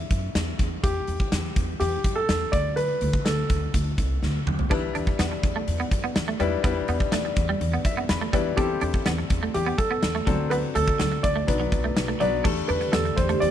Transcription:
Already playing: grand piano E5
0.11 upright bass F#2, kick, closed hi-hat
0.35 upright bass E2, snare, closed hi-hat
0.59 upright bass E2, kick, closed hi-hat
0.83 upright bass E2, grand piano G4, kick, closed hi-hat
1.08 upright bass E2, closed hi-hat
1.20 kick
1.32 upright bass E2, snare, closed hi-hat
1.56 upright bass E2, kick, closed hi-hat
1.80 upright bass E2, grand piano G4, closed hi-hat
2.04 upright bass F#2, kick, closed hi-hat
2.16 grand piano A4
2.29 upright bass E2, snare, closed hi-hat
2.52 upright bass D2, grand piano D5, kick, closed hi-hat
2.76 grand piano B4, closed hi-hat
3.01 upright bass D2, closed hi-hat
3.13 kick
3.25 upright bass D2, grand piano A4, snare, closed hi-hat
3.50 upright bass D2, kick, closed hi-hat
3.74 upright bass D2, kick, closed hi-hat
3.98 upright bass C2, kick, closed hi-hat
4.22 upright bass D2, snare
4.46 upright bass D2, mid tom
4.59 floor tom
4.70 upright bass E2, grand piano G3 D4 E4 B4, clean electric guitar D4, kick, splash
4.95 upright bass E2, clean electric guitar D4, closed hi-hat
5.07 muted clean electric guitar stroke, kick
5.19 upright bass E2, clean electric guitar B3, snare, closed hi-hat
5.32 muted clean electric guitar stroke
5.43 upright bass E2, kick, closed hi-hat
5.56 clean electric guitar A3
5.68 upright bass E2, closed hi-hat
5.80 clean electric guitar B3
5.91 upright bass F#2, muted clean electric guitar stroke, kick, closed hi-hat
6.04 clean electric guitar B3
6.16 upright bass E2, muted clean electric guitar stroke, snare, closed hi-hat
6.28 clean electric guitar A3
6.39 upright bass E2, grand piano G3 D4 E4 B4, clean electric guitar G3, closed hi-hat
6.64 upright bass E2, grand piano G3 D4 E4 B4, clean electric guitar B3, kick, closed hi-hat
6.88 upright bass E2, clean electric guitar B3, closed hi-hat
7.00 muted clean electric guitar stroke, kick
7.12 upright bass E2, clean electric guitar A3, snare, closed hi-hat
7.25 muted clean electric guitar stroke
7.36 upright bass E2, kick, closed hi-hat
7.49 clean electric guitar G3
7.61 upright bass E2, closed hi-hat
7.73 clean electric guitar B3
7.85 upright bass F#2, grand piano E5, muted clean electric guitar stroke, kick, closed hi-hat
7.97 clean electric guitar B3
8.09 upright bass E2, grand piano B5, muted clean electric guitar stroke, snare, closed hi-hat
8.21 clean electric guitar A3
8.33 upright bass E2, grand piano G3 D4 E4 B4, clean electric guitar G3, kick, closed hi-hat
8.57 upright bass E2, grand piano G3 C4 E4 G4 A4, clean electric guitar D4, kick, closed hi-hat
8.81 upright bass E2, clean electric guitar D4, closed hi-hat
8.94 muted clean electric guitar stroke, kick
9.06 upright bass E2, clean electric guitar B3, snare, closed hi-hat
9.18 muted clean electric guitar stroke
9.30 upright bass E2, kick, closed hi-hat
9.43 clean electric guitar A3
9.54 upright bass E2, grand piano G4, closed hi-hat
9.66 clean electric guitar B3
9.78 upright bass F#2, grand piano A4, muted clean electric guitar stroke, kick, closed hi-hat
9.91 clean electric guitar B3
10.03 upright bass E2, muted clean electric guitar stroke, snare, closed hi-hat
10.15 clean electric guitar A3
10.26 upright bass D2, grand piano F#3 C4 D4 A4, clean electric guitar F#3, kick, closed hi-hat
10.50 clean electric guitar B3, grand piano B4, closed hi-hat
10.75 upright bass D2, clean electric guitar A3, grand piano A4, closed hi-hat
10.88 muted clean electric guitar stroke, kick
11.00 upright bass D2, clean electric guitar F#3, snare, closed hi-hat
11.12 muted clean electric guitar stroke
11.23 upright bass D2, grand piano D5, kick, closed hi-hat
11.36 clean electric guitar A3
11.47 upright bass B1, grand piano F#3 B3 D4 B4, kick, closed hi-hat
11.60 clean electric guitar F#3
11.72 upright bass B1, muted clean electric guitar stroke, kick, closed hi-hat
11.84 clean electric guitar A3
11.97 upright bass B1, muted clean electric guitar stroke, snare, closed hi-hat
12.08 clean electric guitar A3
12.20 upright bass B1, grand piano F#3 B3 D4 B4 D5, clean electric guitar F#3, closed hi-hat
12.44 upright bass E2, analog synth pad D3 A3 G4, grand piano G3 A3 D4 A4, clean electric guitar D4, kick, crash
12.57 closed hi-hat
12.68 upright bass E2, clean electric guitar D4, grand piano B4, closed hi-hat
12.81 muted clean electric guitar stroke, closed hi-hat
12.92 upright bass E2, clean electric guitar B3, grand piano A4, snare, tambourine
13.05 muted clean electric guitar stroke, closed hi-hat
13.16 upright bass E2, grand piano C5, kick, closed hi-hat
13.29 clean electric guitar A3, closed hi-hat
13.40 upright bass E2, grand piano D5, closed hi-hat

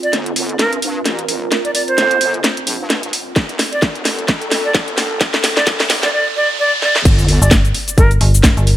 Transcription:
Already playing: ambient pad C4 F4 A#4, riser
0.03 flute D5, closed hi-hat
0.13 wobble bass G1, snare, closed hi-hat
0.26 closed hi-hat
0.36 open hi-hat
0.49 closed hi-hat
0.59 wobble bass G2, flute A#4, snare, closed hi-hat
0.73 closed hi-hat
0.82 open hi-hat
1.05 wobble bass A1, snare, closed hi-hat
1.19 closed hi-hat
1.29 open hi-hat
1.52 snare, closed hi-hat
1.65 flute D5, closed hi-hat
1.74 flute D5, open hi-hat
1.88 flute C5, closed hi-hat
1.98 wobble bass G1, snare, closed hi-hat
2.11 closed hi-hat
2.21 open hi-hat
2.34 closed hi-hat
2.44 snare, closed hi-hat
2.57 closed hi-hat
2.67 wobble bass A#1, open hi-hat
2.80 wobble bass G2
2.90 snare, closed hi-hat
3.03 closed hi-hat
3.13 open hi-hat
3.36 wobble bass F1, kick, snare, closed hi-hat
3.49 closed hi-hat
3.57 ambient pad A4, snare, open hi-hat
3.72 flute D5, closed hi-hat
3.82 wobble bass F1, kick, snare, closed hi-hat
3.95 closed hi-hat
4.05 snare, open hi-hat
4.19 closed hi-hat
4.28 wobble bass F2, kick, snare, closed hi-hat
4.42 closed hi-hat
4.51 snare, open hi-hat
4.65 flute D5
4.75 wobble bass G1, kick, snare, closed hi-hat
4.88 closed hi-hat
4.98 snare, open hi-hat
5.21 kick, snare, closed hi-hat
5.34 snare, closed hi-hat
5.44 snare, open hi-hat
5.57 flute D5, snare, closed hi-hat
5.67 wobble bass F1, kick, snare, closed hi-hat
5.80 snare, open hi-hat
5.90 snare, open hi-hat
6.03 flute D5, snare, closed hi-hat
6.13 flute D5
6.36 flute D5
6.59 flute D5
6.82 flute D5, snare
6.96 snare
7.05 wobble bass G1, kick, closed hi-hat, crash, sub drop, cabasa
7.19 closed hi-hat, cabasa
7.28 open hi-hat
7.42 fm bass G1, flute D5, cabasa
7.51 kick, snare, closed hi-hat, cabasa
7.65 closed hi-hat, cabasa
7.75 open hi-hat
7.84 ambient pad A#4, closed hi-hat, cabasa
7.98 fm bass G1, flute A#4, kick, closed hi-hat, cabasa
8.11 closed hi-hat, cabasa
8.21 fm bass G1, open hi-hat
8.34 cabasa
8.44 kick, snare, closed hi-hat, cabasa
8.57 fm bass G1, closed hi-hat, cabasa
8.67 open hi-hat

